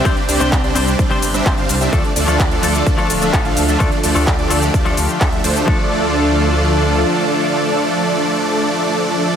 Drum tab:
RD |--x---x---x---x-|--x---x---x---x-|--x---x---x---x-|----------------|
HH |xxoxxxoxxxoxxxox|xxoxxxoxxxoxxxox|xxooxxoxxxoxxxox|----------------|
SH |x-xxx-xxx-xxx-xx|x-xxx-xxx-xxx-xx|x-xxx-xxx-xxx-xx|----------------|
CP |----x-------x---|----x-------x---|----x-------x---|----------------|
BD |o---o---o---o---|o---o---o---o---|o---o---o---o---|o---------------|

RD |----------------|
HH |----------------|
SH |----------------|
CP |----------------|
BD |----------------|